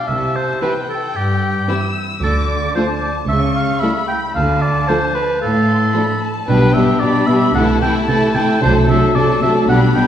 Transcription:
0.07 double bass section C2, cello section C3, oboe E5, violin section A5
0.36 oboe C5
0.61 viola section E3 C4, violin section E4 G4 G5, oboe B4
0.89 oboe A4
1.15 cello section G2, oboe G4
1.68 viola section E3 C4, violin section E4 G4 E6
2.22 double bass section D2, cello section D3, oboe A4, violin section D6
2.49 oboe D5
2.75 viola section F3 A3, violin section D4 F4 A5, oboe C5
3.01 oboe D5
3.28 double bass section C#2, cello section C#3, oboe E5, violin section C#6
3.55 oboe F5
3.81 viola section G3 A3, violin section E4 A4 B5, oboe E5
4.08 oboe G5
4.35 double bass section D2, cello section D3, oboe F5, violin section A5
4.62 oboe D5
4.88 viola section F3 A3, violin section D4 A4, oboe C5
5.15 oboe B4
5.42 cello section A2, oboe A4, violin section F5
5.68 violin section C6
5.94 viola section F3 A3, violin section D4 A4 B5
6.22 violin section A5
6.47 double bass section B1, cello section B2, viola section G3 B3, violin section D4 G4 G5, oboe B4
6.74 cello section B2, viola section G3 B3, violin section D4 G4, oboe E5
7.00 cello section B2, viola section G3 B3, violin section D4 G4 B5, oboe D5
7.27 cello section B2, viola section G3 B3, violin section D4 G4, oboe E5
7.54 double bass section C2, cello section C3, viola section E3 A3, violin section E4 A4 A5, oboe F#5
7.81 cello section C3, viola section E3 A3, violin section E4 A4, oboe G5
8.08 cello section C3, viola section E3 A3, violin section E4 A4, oboe A5
8.35 cello section C3, viola section E3 A3, violin section E4 A4, oboe G5
8.61 double bass section C2, cello section C3, viola section F#3 A3, violin section D4 A4, oboe C5
8.87 cello section C3, viola section F#3 A3, violin section D4 A4, oboe E5
9.14 cello section C3, viola section F#3 A3, violin section D4 A4 A5, oboe D5
9.41 cello section C3, viola section F#3 A3, violin section D4 A4, oboe E5
9.67 double bass section B1, cello section B2, viola section G3 B3, violin section D4 G4 B5, oboe F#5
9.94 cello section B2, viola section G3 B3, violin section D4 G4, oboe G5

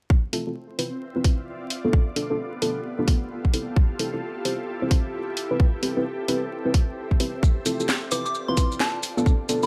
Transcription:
0.10 ambient pad C4, kick
0.33 synth stab C4 E4 F4 A4, open hi-hat
0.45 synth stab C4 E4 F4 A4, ambient pad F4
0.79 synth stab C4 E4 F4 B4, open hi-hat
0.83 ambient pad D5 E5
1.16 synth stab C4 E4 F4 B4
1.24 synth stab C4 E4 F4 B4, kick, open hi-hat
1.70 ambient pad B3, open hi-hat
1.84 synth stab B3 D4 F4 A4, ambient pad G4
1.93 kick
2.16 synth stab B3 D4 F4 A4, open hi-hat
2.30 synth stab B3 D4 F4 A4
2.55 ambient pad F4 A4
2.62 synth stab B3 D4 F4 A4, open hi-hat
2.99 synth stab B3 D4 F4 A4
3.08 synth stab B3 D4 F4 A4, kick, open hi-hat
3.45 kick
3.54 synth stab C4 E4 G4 A4, ambient pad E4, open hi-hat
3.76 kick
3.99 synth stab C4 E4 G4 A4, open hi-hat
4.14 synth stab C4 E4 G4 A4
4.45 synth stab C4 E4 G4 C5, open hi-hat
4.82 synth stab C4 E4 G4 C5
4.91 synth stab C4 E4 G4 C5, kick, open hi-hat
5.37 open hi-hat
5.51 synth stab C4 E4 G4 B4
5.60 ambient pad C4, kick
5.82 synth stab C4 E4 G4 B4, open hi-hat
5.97 synth stab C4 E4 G4 B4
6.28 synth stab C4 E4 G4 B4, open hi-hat
6.45 ambient pad E5
6.65 synth stab C4 E4 G4 B4
6.74 kick, open hi-hat
7.11 kick
7.20 synth stab C4 E4 G4 B4, open hi-hat
7.43 kick, maracas
7.65 synth stab C4 E4 F4 A4, open hi-hat, maracas
7.80 synth stab C4 E4 F4 A4, maracas
7.88 ambient pad F4, snare, maracas
8.03 ambient pad D5
8.11 synth stab C4 E4 F4 B4, synth bell D6, open hi-hat, maracas
8.26 synth bell D6, maracas
8.35 maracas
8.48 synth stab C4 E4 F4 B4, synth bell C6
8.57 synth stab C4 E4 F4, kick, open hi-hat, maracas
8.72 maracas
8.80 synth bell A5, snare, maracas
9.03 ambient pad B3, open hi-hat, maracas
9.17 synth stab B3 D4 F4 A4, maracas
9.26 kick, maracas
9.34 ambient pad A4 F5
9.49 synth stab B3 D4 F4 A4, ambient pad G5, open hi-hat, maracas
9.63 synth stab B3 D4 F4 A4, synth bell B5, maracas

